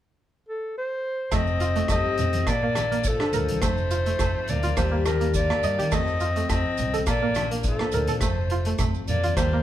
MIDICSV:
0, 0, Header, 1, 8, 480
1, 0, Start_track
1, 0, Tempo, 575264
1, 1104, Time_signature, 4, 2, 24, 8
1, 8033, End_track
2, 0, Start_track
2, 0, Title_t, "Clarinet"
2, 0, Program_c, 0, 71
2, 406, Note_on_c, 0, 69, 75
2, 619, Note_off_c, 0, 69, 0
2, 649, Note_on_c, 0, 72, 90
2, 1120, Note_on_c, 0, 75, 90
2, 1133, Note_off_c, 0, 72, 0
2, 1593, Note_off_c, 0, 75, 0
2, 1596, Note_on_c, 0, 75, 94
2, 2076, Note_on_c, 0, 74, 101
2, 2089, Note_off_c, 0, 75, 0
2, 2564, Note_on_c, 0, 69, 83
2, 2576, Note_off_c, 0, 74, 0
2, 3021, Note_on_c, 0, 72, 98
2, 3033, Note_off_c, 0, 69, 0
2, 3753, Note_on_c, 0, 74, 87
2, 3766, Note_off_c, 0, 72, 0
2, 3977, Note_off_c, 0, 74, 0
2, 3982, Note_on_c, 0, 72, 88
2, 4206, Note_off_c, 0, 72, 0
2, 4222, Note_on_c, 0, 70, 84
2, 4447, Note_off_c, 0, 70, 0
2, 4466, Note_on_c, 0, 74, 96
2, 4950, Note_on_c, 0, 75, 91
2, 4963, Note_off_c, 0, 74, 0
2, 5417, Note_off_c, 0, 75, 0
2, 5422, Note_on_c, 0, 75, 80
2, 5869, Note_off_c, 0, 75, 0
2, 5917, Note_on_c, 0, 74, 98
2, 6255, Note_off_c, 0, 74, 0
2, 6387, Note_on_c, 0, 69, 80
2, 6859, Note_on_c, 0, 72, 76
2, 6872, Note_off_c, 0, 69, 0
2, 7357, Note_off_c, 0, 72, 0
2, 7577, Note_on_c, 0, 74, 89
2, 7802, Note_off_c, 0, 74, 0
2, 7816, Note_on_c, 0, 72, 95
2, 8033, Note_off_c, 0, 72, 0
2, 8033, End_track
3, 0, Start_track
3, 0, Title_t, "Alto saxophone"
3, 0, Program_c, 1, 65
3, 1142, Note_on_c, 1, 60, 89
3, 1604, Note_off_c, 1, 60, 0
3, 1624, Note_on_c, 1, 60, 88
3, 2093, Note_on_c, 1, 58, 77
3, 2106, Note_off_c, 1, 60, 0
3, 2579, Note_on_c, 1, 53, 73
3, 2592, Note_off_c, 1, 58, 0
3, 3047, Note_on_c, 1, 57, 79
3, 3060, Note_off_c, 1, 53, 0
3, 3764, Note_on_c, 1, 58, 76
3, 3777, Note_off_c, 1, 57, 0
3, 3992, Note_off_c, 1, 58, 0
3, 3997, Note_on_c, 1, 55, 75
3, 4215, Note_off_c, 1, 55, 0
3, 4248, Note_on_c, 1, 55, 65
3, 4460, Note_off_c, 1, 55, 0
3, 4487, Note_on_c, 1, 58, 78
3, 4960, Note_on_c, 1, 60, 82
3, 4973, Note_off_c, 1, 58, 0
3, 5432, Note_off_c, 1, 60, 0
3, 5448, Note_on_c, 1, 60, 87
3, 5883, Note_off_c, 1, 60, 0
3, 5929, Note_on_c, 1, 58, 80
3, 6363, Note_off_c, 1, 58, 0
3, 6401, Note_on_c, 1, 53, 62
3, 6874, Note_on_c, 1, 57, 65
3, 6886, Note_off_c, 1, 53, 0
3, 7364, Note_off_c, 1, 57, 0
3, 7592, Note_on_c, 1, 58, 79
3, 7810, Note_off_c, 1, 58, 0
3, 7824, Note_on_c, 1, 55, 74
3, 8033, Note_off_c, 1, 55, 0
3, 8033, End_track
4, 0, Start_track
4, 0, Title_t, "Synth pluck"
4, 0, Program_c, 2, 84
4, 1103, Note_on_c, 2, 57, 91
4, 1223, Note_off_c, 2, 57, 0
4, 1340, Note_on_c, 2, 65, 67
4, 1462, Note_off_c, 2, 65, 0
4, 1468, Note_on_c, 2, 57, 83
4, 1576, Note_off_c, 2, 57, 0
4, 1589, Note_on_c, 2, 57, 65
4, 1706, Note_off_c, 2, 57, 0
4, 2067, Note_on_c, 2, 58, 67
4, 2183, Note_off_c, 2, 58, 0
4, 2193, Note_on_c, 2, 58, 83
4, 2299, Note_off_c, 2, 58, 0
4, 2431, Note_on_c, 2, 58, 75
4, 2537, Note_off_c, 2, 58, 0
4, 2670, Note_on_c, 2, 62, 64
4, 2777, Note_off_c, 2, 62, 0
4, 2783, Note_on_c, 2, 70, 78
4, 2903, Note_off_c, 2, 70, 0
4, 3023, Note_on_c, 2, 57, 83
4, 3143, Note_off_c, 2, 57, 0
4, 3262, Note_on_c, 2, 65, 63
4, 3383, Note_off_c, 2, 65, 0
4, 3390, Note_on_c, 2, 57, 79
4, 3492, Note_off_c, 2, 57, 0
4, 3502, Note_on_c, 2, 57, 67
4, 3623, Note_off_c, 2, 57, 0
4, 3866, Note_on_c, 2, 65, 79
4, 3975, Note_off_c, 2, 65, 0
4, 3979, Note_on_c, 2, 58, 66
4, 4092, Note_off_c, 2, 58, 0
4, 4102, Note_on_c, 2, 58, 84
4, 4212, Note_off_c, 2, 58, 0
4, 4343, Note_on_c, 2, 58, 70
4, 4453, Note_off_c, 2, 58, 0
4, 4587, Note_on_c, 2, 58, 61
4, 4695, Note_off_c, 2, 58, 0
4, 4702, Note_on_c, 2, 75, 87
4, 4823, Note_off_c, 2, 75, 0
4, 4828, Note_on_c, 2, 67, 83
4, 4935, Note_off_c, 2, 67, 0
4, 4939, Note_on_c, 2, 57, 93
4, 5061, Note_off_c, 2, 57, 0
4, 5180, Note_on_c, 2, 65, 72
4, 5301, Note_off_c, 2, 65, 0
4, 5309, Note_on_c, 2, 57, 79
4, 5406, Note_off_c, 2, 57, 0
4, 5416, Note_on_c, 2, 57, 66
4, 5539, Note_off_c, 2, 57, 0
4, 5787, Note_on_c, 2, 69, 75
4, 5894, Note_off_c, 2, 69, 0
4, 5900, Note_on_c, 2, 58, 68
4, 6017, Note_off_c, 2, 58, 0
4, 6027, Note_on_c, 2, 58, 88
4, 6135, Note_off_c, 2, 58, 0
4, 6266, Note_on_c, 2, 58, 71
4, 6374, Note_off_c, 2, 58, 0
4, 6508, Note_on_c, 2, 58, 59
4, 6615, Note_off_c, 2, 58, 0
4, 6623, Note_on_c, 2, 70, 73
4, 6742, Note_off_c, 2, 70, 0
4, 6745, Note_on_c, 2, 69, 84
4, 6853, Note_off_c, 2, 69, 0
4, 6860, Note_on_c, 2, 57, 81
4, 6981, Note_off_c, 2, 57, 0
4, 7104, Note_on_c, 2, 65, 71
4, 7222, Note_off_c, 2, 65, 0
4, 7228, Note_on_c, 2, 57, 79
4, 7335, Note_off_c, 2, 57, 0
4, 7346, Note_on_c, 2, 57, 69
4, 7463, Note_off_c, 2, 57, 0
4, 7707, Note_on_c, 2, 65, 72
4, 7814, Note_off_c, 2, 65, 0
4, 7822, Note_on_c, 2, 58, 64
4, 7942, Note_off_c, 2, 58, 0
4, 7952, Note_on_c, 2, 58, 90
4, 8033, Note_off_c, 2, 58, 0
4, 8033, End_track
5, 0, Start_track
5, 0, Title_t, "Steel-string acoustic guitar"
5, 0, Program_c, 3, 25
5, 1107, Note_on_c, 3, 53, 66
5, 1358, Note_on_c, 3, 63, 54
5, 1586, Note_off_c, 3, 53, 0
5, 1590, Note_on_c, 3, 55, 52
5, 1825, Note_off_c, 3, 55, 0
5, 1828, Note_on_c, 3, 57, 54
5, 2045, Note_off_c, 3, 63, 0
5, 2067, Note_off_c, 3, 57, 0
5, 2069, Note_on_c, 3, 46, 58
5, 2316, Note_on_c, 3, 62, 55
5, 2545, Note_on_c, 3, 50, 56
5, 2783, Note_off_c, 3, 50, 0
5, 2787, Note_on_c, 3, 51, 57
5, 3000, Note_off_c, 3, 46, 0
5, 3004, Note_off_c, 3, 62, 0
5, 3026, Note_off_c, 3, 51, 0
5, 3027, Note_on_c, 3, 53, 80
5, 3284, Note_on_c, 3, 63, 52
5, 3511, Note_on_c, 3, 60, 53
5, 3961, Note_off_c, 3, 60, 0
5, 3967, Note_off_c, 3, 63, 0
5, 3980, Note_on_c, 3, 51, 61
5, 3986, Note_off_c, 3, 53, 0
5, 3991, Note_on_c, 3, 55, 46
5, 3995, Note_on_c, 3, 58, 45
5, 4001, Note_on_c, 3, 63, 46
5, 4008, Note_on_c, 3, 67, 57
5, 4219, Note_off_c, 3, 58, 0
5, 4229, Note_on_c, 3, 58, 54
5, 4457, Note_off_c, 3, 51, 0
5, 4461, Note_on_c, 3, 50, 62
5, 4701, Note_off_c, 3, 50, 0
5, 4705, Note_on_c, 3, 51, 64
5, 4921, Note_off_c, 3, 55, 0
5, 4925, Note_off_c, 3, 63, 0
5, 4939, Note_on_c, 3, 53, 69
5, 4944, Note_off_c, 3, 51, 0
5, 4946, Note_off_c, 3, 58, 0
5, 4949, Note_on_c, 3, 60, 61
5, 4956, Note_off_c, 3, 67, 0
5, 4956, Note_on_c, 3, 63, 60
5, 4960, Note_on_c, 3, 69, 67
5, 5189, Note_off_c, 3, 63, 0
5, 5418, Note_off_c, 3, 60, 0
5, 5428, Note_on_c, 3, 60, 55
5, 5879, Note_off_c, 3, 60, 0
5, 5884, Note_off_c, 3, 69, 0
5, 5905, Note_on_c, 3, 46, 60
5, 6145, Note_on_c, 3, 62, 55
5, 6385, Note_on_c, 3, 50, 59
5, 6621, Note_off_c, 3, 50, 0
5, 6625, Note_on_c, 3, 51, 57
5, 6837, Note_off_c, 3, 46, 0
5, 6837, Note_off_c, 3, 62, 0
5, 6860, Note_off_c, 3, 53, 0
5, 6864, Note_off_c, 3, 51, 0
5, 6872, Note_on_c, 3, 53, 75
5, 7337, Note_on_c, 3, 60, 55
5, 7793, Note_off_c, 3, 60, 0
5, 7815, Note_on_c, 3, 51, 62
5, 7827, Note_off_c, 3, 53, 0
5, 8033, Note_off_c, 3, 51, 0
5, 8033, End_track
6, 0, Start_track
6, 0, Title_t, "Fingered electric bass"
6, 0, Program_c, 4, 33
6, 1098, Note_on_c, 4, 29, 85
6, 1513, Note_off_c, 4, 29, 0
6, 1579, Note_on_c, 4, 29, 74
6, 1690, Note_off_c, 4, 29, 0
6, 1827, Note_on_c, 4, 41, 79
6, 2032, Note_off_c, 4, 41, 0
6, 2063, Note_on_c, 4, 34, 94
6, 2682, Note_off_c, 4, 34, 0
6, 2778, Note_on_c, 4, 38, 84
6, 2890, Note_off_c, 4, 38, 0
6, 2917, Note_on_c, 4, 36, 69
6, 3020, Note_on_c, 4, 29, 83
6, 3033, Note_off_c, 4, 36, 0
6, 3434, Note_off_c, 4, 29, 0
6, 3498, Note_on_c, 4, 29, 86
6, 3610, Note_off_c, 4, 29, 0
6, 3750, Note_on_c, 4, 38, 82
6, 3954, Note_off_c, 4, 38, 0
6, 3979, Note_on_c, 4, 39, 93
6, 4599, Note_off_c, 4, 39, 0
6, 4705, Note_on_c, 4, 43, 80
6, 4814, Note_off_c, 4, 43, 0
6, 4840, Note_on_c, 4, 51, 72
6, 4944, Note_on_c, 4, 41, 84
6, 4956, Note_off_c, 4, 51, 0
6, 5356, Note_off_c, 4, 41, 0
6, 5419, Note_on_c, 4, 41, 82
6, 5530, Note_off_c, 4, 41, 0
6, 5665, Note_on_c, 4, 36, 75
6, 5870, Note_off_c, 4, 36, 0
6, 5898, Note_on_c, 4, 34, 95
6, 6518, Note_off_c, 4, 34, 0
6, 6616, Note_on_c, 4, 38, 86
6, 6728, Note_off_c, 4, 38, 0
6, 6741, Note_on_c, 4, 46, 70
6, 6855, Note_on_c, 4, 29, 84
6, 6868, Note_off_c, 4, 46, 0
6, 7270, Note_off_c, 4, 29, 0
6, 7335, Note_on_c, 4, 29, 85
6, 7447, Note_off_c, 4, 29, 0
6, 7577, Note_on_c, 4, 41, 80
6, 7785, Note_off_c, 4, 41, 0
6, 7816, Note_on_c, 4, 39, 99
6, 8033, Note_off_c, 4, 39, 0
6, 8033, End_track
7, 0, Start_track
7, 0, Title_t, "Muted steel-string acoustic guitar strokes"
7, 7110, Note_on_c, 9, 29, 52
7, 7193, Note_off_c, 9, 29, 0
7, 8033, End_track
8, 0, Start_track
8, 0, Title_t, "Drums"
8, 1097, Note_on_c, 9, 68, 56
8, 1099, Note_on_c, 9, 37, 63
8, 1099, Note_on_c, 9, 42, 42
8, 1099, Note_on_c, 9, 70, 68
8, 1100, Note_on_c, 9, 36, 80
8, 1181, Note_off_c, 9, 68, 0
8, 1183, Note_off_c, 9, 36, 0
8, 1183, Note_off_c, 9, 37, 0
8, 1183, Note_off_c, 9, 42, 0
8, 1183, Note_off_c, 9, 70, 0
8, 1227, Note_on_c, 9, 70, 22
8, 1311, Note_off_c, 9, 70, 0
8, 1336, Note_on_c, 9, 42, 47
8, 1346, Note_on_c, 9, 70, 54
8, 1419, Note_off_c, 9, 42, 0
8, 1430, Note_off_c, 9, 70, 0
8, 1465, Note_on_c, 9, 42, 45
8, 1477, Note_on_c, 9, 70, 21
8, 1549, Note_off_c, 9, 42, 0
8, 1561, Note_off_c, 9, 70, 0
8, 1572, Note_on_c, 9, 37, 62
8, 1572, Note_on_c, 9, 42, 48
8, 1578, Note_on_c, 9, 36, 80
8, 1582, Note_on_c, 9, 70, 79
8, 1586, Note_on_c, 9, 68, 64
8, 1655, Note_off_c, 9, 37, 0
8, 1655, Note_off_c, 9, 42, 0
8, 1661, Note_off_c, 9, 36, 0
8, 1665, Note_off_c, 9, 70, 0
8, 1669, Note_off_c, 9, 68, 0
8, 1816, Note_on_c, 9, 42, 51
8, 1825, Note_on_c, 9, 70, 62
8, 1831, Note_on_c, 9, 64, 72
8, 1899, Note_off_c, 9, 42, 0
8, 1909, Note_off_c, 9, 70, 0
8, 1914, Note_off_c, 9, 64, 0
8, 1944, Note_on_c, 9, 42, 48
8, 1952, Note_on_c, 9, 70, 22
8, 1956, Note_on_c, 9, 63, 74
8, 2027, Note_off_c, 9, 42, 0
8, 2035, Note_off_c, 9, 70, 0
8, 2040, Note_off_c, 9, 63, 0
8, 2059, Note_on_c, 9, 37, 67
8, 2059, Note_on_c, 9, 42, 49
8, 2060, Note_on_c, 9, 36, 75
8, 2062, Note_on_c, 9, 68, 61
8, 2063, Note_on_c, 9, 70, 75
8, 2142, Note_off_c, 9, 37, 0
8, 2142, Note_off_c, 9, 42, 0
8, 2143, Note_off_c, 9, 36, 0
8, 2145, Note_off_c, 9, 68, 0
8, 2146, Note_off_c, 9, 70, 0
8, 2296, Note_on_c, 9, 68, 62
8, 2299, Note_on_c, 9, 37, 64
8, 2299, Note_on_c, 9, 42, 43
8, 2305, Note_on_c, 9, 70, 68
8, 2312, Note_on_c, 9, 63, 69
8, 2379, Note_off_c, 9, 68, 0
8, 2383, Note_off_c, 9, 37, 0
8, 2383, Note_off_c, 9, 42, 0
8, 2388, Note_off_c, 9, 70, 0
8, 2396, Note_off_c, 9, 63, 0
8, 2437, Note_on_c, 9, 42, 49
8, 2521, Note_off_c, 9, 42, 0
8, 2534, Note_on_c, 9, 70, 85
8, 2542, Note_on_c, 9, 36, 83
8, 2543, Note_on_c, 9, 42, 47
8, 2617, Note_off_c, 9, 70, 0
8, 2625, Note_off_c, 9, 36, 0
8, 2627, Note_off_c, 9, 42, 0
8, 2669, Note_on_c, 9, 37, 60
8, 2673, Note_on_c, 9, 68, 58
8, 2753, Note_off_c, 9, 37, 0
8, 2756, Note_off_c, 9, 68, 0
8, 2777, Note_on_c, 9, 42, 49
8, 2779, Note_on_c, 9, 70, 70
8, 2794, Note_on_c, 9, 64, 71
8, 2861, Note_off_c, 9, 42, 0
8, 2863, Note_off_c, 9, 70, 0
8, 2877, Note_off_c, 9, 64, 0
8, 2907, Note_on_c, 9, 42, 52
8, 2922, Note_on_c, 9, 63, 69
8, 2991, Note_off_c, 9, 42, 0
8, 3005, Note_off_c, 9, 63, 0
8, 3017, Note_on_c, 9, 37, 63
8, 3017, Note_on_c, 9, 42, 45
8, 3021, Note_on_c, 9, 36, 78
8, 3022, Note_on_c, 9, 70, 89
8, 3025, Note_on_c, 9, 68, 61
8, 3101, Note_off_c, 9, 37, 0
8, 3101, Note_off_c, 9, 42, 0
8, 3104, Note_off_c, 9, 36, 0
8, 3106, Note_off_c, 9, 70, 0
8, 3108, Note_off_c, 9, 68, 0
8, 3149, Note_on_c, 9, 70, 27
8, 3233, Note_off_c, 9, 70, 0
8, 3259, Note_on_c, 9, 42, 46
8, 3262, Note_on_c, 9, 70, 70
8, 3343, Note_off_c, 9, 42, 0
8, 3345, Note_off_c, 9, 70, 0
8, 3388, Note_on_c, 9, 42, 43
8, 3388, Note_on_c, 9, 70, 27
8, 3472, Note_off_c, 9, 42, 0
8, 3472, Note_off_c, 9, 70, 0
8, 3497, Note_on_c, 9, 37, 60
8, 3497, Note_on_c, 9, 42, 45
8, 3499, Note_on_c, 9, 36, 76
8, 3499, Note_on_c, 9, 70, 95
8, 3510, Note_on_c, 9, 68, 63
8, 3580, Note_off_c, 9, 37, 0
8, 3580, Note_off_c, 9, 42, 0
8, 3583, Note_off_c, 9, 36, 0
8, 3583, Note_off_c, 9, 70, 0
8, 3594, Note_off_c, 9, 68, 0
8, 3735, Note_on_c, 9, 42, 43
8, 3742, Note_on_c, 9, 70, 64
8, 3754, Note_on_c, 9, 64, 69
8, 3818, Note_off_c, 9, 42, 0
8, 3825, Note_off_c, 9, 70, 0
8, 3837, Note_off_c, 9, 64, 0
8, 3862, Note_on_c, 9, 42, 43
8, 3874, Note_on_c, 9, 70, 26
8, 3882, Note_on_c, 9, 63, 62
8, 3945, Note_off_c, 9, 42, 0
8, 3957, Note_off_c, 9, 70, 0
8, 3966, Note_off_c, 9, 63, 0
8, 3979, Note_on_c, 9, 70, 90
8, 3980, Note_on_c, 9, 36, 85
8, 3980, Note_on_c, 9, 37, 63
8, 3980, Note_on_c, 9, 42, 45
8, 3985, Note_on_c, 9, 68, 58
8, 4062, Note_off_c, 9, 70, 0
8, 4063, Note_off_c, 9, 37, 0
8, 4063, Note_off_c, 9, 42, 0
8, 4064, Note_off_c, 9, 36, 0
8, 4068, Note_off_c, 9, 68, 0
8, 4218, Note_on_c, 9, 70, 65
8, 4219, Note_on_c, 9, 37, 65
8, 4219, Note_on_c, 9, 42, 41
8, 4224, Note_on_c, 9, 68, 56
8, 4238, Note_on_c, 9, 63, 69
8, 4301, Note_off_c, 9, 70, 0
8, 4302, Note_off_c, 9, 37, 0
8, 4302, Note_off_c, 9, 42, 0
8, 4307, Note_off_c, 9, 68, 0
8, 4322, Note_off_c, 9, 63, 0
8, 4347, Note_on_c, 9, 42, 43
8, 4430, Note_off_c, 9, 42, 0
8, 4456, Note_on_c, 9, 70, 85
8, 4461, Note_on_c, 9, 36, 78
8, 4461, Note_on_c, 9, 42, 43
8, 4539, Note_off_c, 9, 70, 0
8, 4545, Note_off_c, 9, 36, 0
8, 4545, Note_off_c, 9, 42, 0
8, 4590, Note_on_c, 9, 68, 62
8, 4591, Note_on_c, 9, 37, 65
8, 4674, Note_off_c, 9, 37, 0
8, 4674, Note_off_c, 9, 68, 0
8, 4699, Note_on_c, 9, 70, 60
8, 4703, Note_on_c, 9, 42, 46
8, 4782, Note_off_c, 9, 70, 0
8, 4786, Note_off_c, 9, 42, 0
8, 4834, Note_on_c, 9, 42, 50
8, 4838, Note_on_c, 9, 63, 64
8, 4918, Note_off_c, 9, 42, 0
8, 4922, Note_off_c, 9, 63, 0
8, 4936, Note_on_c, 9, 70, 84
8, 4938, Note_on_c, 9, 68, 64
8, 4939, Note_on_c, 9, 37, 62
8, 4939, Note_on_c, 9, 42, 42
8, 4941, Note_on_c, 9, 36, 79
8, 5019, Note_off_c, 9, 70, 0
8, 5021, Note_off_c, 9, 68, 0
8, 5023, Note_off_c, 9, 37, 0
8, 5023, Note_off_c, 9, 42, 0
8, 5025, Note_off_c, 9, 36, 0
8, 5067, Note_on_c, 9, 70, 24
8, 5151, Note_off_c, 9, 70, 0
8, 5175, Note_on_c, 9, 70, 62
8, 5181, Note_on_c, 9, 42, 41
8, 5259, Note_off_c, 9, 70, 0
8, 5264, Note_off_c, 9, 42, 0
8, 5307, Note_on_c, 9, 42, 42
8, 5310, Note_on_c, 9, 70, 24
8, 5390, Note_off_c, 9, 42, 0
8, 5393, Note_off_c, 9, 70, 0
8, 5420, Note_on_c, 9, 36, 77
8, 5420, Note_on_c, 9, 37, 68
8, 5420, Note_on_c, 9, 42, 48
8, 5420, Note_on_c, 9, 70, 94
8, 5422, Note_on_c, 9, 68, 64
8, 5503, Note_off_c, 9, 37, 0
8, 5503, Note_off_c, 9, 42, 0
8, 5503, Note_off_c, 9, 70, 0
8, 5504, Note_off_c, 9, 36, 0
8, 5505, Note_off_c, 9, 68, 0
8, 5653, Note_on_c, 9, 70, 67
8, 5657, Note_on_c, 9, 42, 47
8, 5673, Note_on_c, 9, 64, 67
8, 5736, Note_off_c, 9, 70, 0
8, 5740, Note_off_c, 9, 42, 0
8, 5757, Note_off_c, 9, 64, 0
8, 5785, Note_on_c, 9, 70, 25
8, 5789, Note_on_c, 9, 42, 51
8, 5800, Note_on_c, 9, 63, 67
8, 5868, Note_off_c, 9, 70, 0
8, 5873, Note_off_c, 9, 42, 0
8, 5883, Note_off_c, 9, 63, 0
8, 5895, Note_on_c, 9, 70, 88
8, 5897, Note_on_c, 9, 37, 62
8, 5897, Note_on_c, 9, 42, 47
8, 5899, Note_on_c, 9, 36, 89
8, 5905, Note_on_c, 9, 68, 62
8, 5978, Note_off_c, 9, 70, 0
8, 5981, Note_off_c, 9, 37, 0
8, 5981, Note_off_c, 9, 42, 0
8, 5983, Note_off_c, 9, 36, 0
8, 5988, Note_off_c, 9, 68, 0
8, 6129, Note_on_c, 9, 70, 59
8, 6142, Note_on_c, 9, 37, 66
8, 6142, Note_on_c, 9, 42, 49
8, 6148, Note_on_c, 9, 68, 58
8, 6152, Note_on_c, 9, 63, 73
8, 6213, Note_off_c, 9, 70, 0
8, 6225, Note_off_c, 9, 37, 0
8, 6225, Note_off_c, 9, 42, 0
8, 6231, Note_off_c, 9, 68, 0
8, 6235, Note_off_c, 9, 63, 0
8, 6270, Note_on_c, 9, 42, 54
8, 6353, Note_off_c, 9, 42, 0
8, 6369, Note_on_c, 9, 70, 82
8, 6375, Note_on_c, 9, 42, 47
8, 6378, Note_on_c, 9, 36, 86
8, 6453, Note_off_c, 9, 70, 0
8, 6459, Note_off_c, 9, 42, 0
8, 6461, Note_off_c, 9, 36, 0
8, 6503, Note_on_c, 9, 37, 61
8, 6514, Note_on_c, 9, 68, 55
8, 6586, Note_off_c, 9, 37, 0
8, 6598, Note_off_c, 9, 68, 0
8, 6606, Note_on_c, 9, 70, 60
8, 6614, Note_on_c, 9, 42, 54
8, 6628, Note_on_c, 9, 64, 66
8, 6689, Note_off_c, 9, 70, 0
8, 6697, Note_off_c, 9, 42, 0
8, 6711, Note_off_c, 9, 64, 0
8, 6737, Note_on_c, 9, 42, 49
8, 6758, Note_on_c, 9, 63, 65
8, 6820, Note_off_c, 9, 42, 0
8, 6842, Note_off_c, 9, 63, 0
8, 6848, Note_on_c, 9, 37, 57
8, 6848, Note_on_c, 9, 42, 46
8, 6852, Note_on_c, 9, 70, 85
8, 6853, Note_on_c, 9, 36, 82
8, 6865, Note_on_c, 9, 68, 59
8, 6931, Note_off_c, 9, 37, 0
8, 6931, Note_off_c, 9, 42, 0
8, 6935, Note_off_c, 9, 70, 0
8, 6937, Note_off_c, 9, 36, 0
8, 6948, Note_off_c, 9, 68, 0
8, 7091, Note_on_c, 9, 42, 43
8, 7174, Note_off_c, 9, 42, 0
8, 7218, Note_on_c, 9, 42, 49
8, 7221, Note_on_c, 9, 70, 24
8, 7301, Note_off_c, 9, 42, 0
8, 7304, Note_off_c, 9, 70, 0
8, 7330, Note_on_c, 9, 70, 97
8, 7332, Note_on_c, 9, 37, 58
8, 7332, Note_on_c, 9, 42, 45
8, 7334, Note_on_c, 9, 36, 87
8, 7338, Note_on_c, 9, 68, 55
8, 7344, Note_on_c, 9, 64, 62
8, 7414, Note_off_c, 9, 70, 0
8, 7415, Note_off_c, 9, 37, 0
8, 7415, Note_off_c, 9, 42, 0
8, 7417, Note_off_c, 9, 36, 0
8, 7421, Note_off_c, 9, 68, 0
8, 7428, Note_off_c, 9, 64, 0
8, 7463, Note_on_c, 9, 70, 23
8, 7547, Note_off_c, 9, 70, 0
8, 7574, Note_on_c, 9, 42, 42
8, 7574, Note_on_c, 9, 70, 67
8, 7589, Note_on_c, 9, 63, 66
8, 7589, Note_on_c, 9, 64, 66
8, 7657, Note_off_c, 9, 42, 0
8, 7658, Note_off_c, 9, 70, 0
8, 7672, Note_off_c, 9, 63, 0
8, 7672, Note_off_c, 9, 64, 0
8, 7704, Note_on_c, 9, 70, 26
8, 7705, Note_on_c, 9, 42, 41
8, 7714, Note_on_c, 9, 63, 67
8, 7788, Note_off_c, 9, 70, 0
8, 7789, Note_off_c, 9, 42, 0
8, 7798, Note_off_c, 9, 63, 0
8, 7816, Note_on_c, 9, 36, 85
8, 7816, Note_on_c, 9, 37, 67
8, 7816, Note_on_c, 9, 42, 44
8, 7819, Note_on_c, 9, 68, 58
8, 7821, Note_on_c, 9, 70, 84
8, 7899, Note_off_c, 9, 36, 0
8, 7900, Note_off_c, 9, 37, 0
8, 7900, Note_off_c, 9, 42, 0
8, 7902, Note_off_c, 9, 68, 0
8, 7904, Note_off_c, 9, 70, 0
8, 8033, End_track
0, 0, End_of_file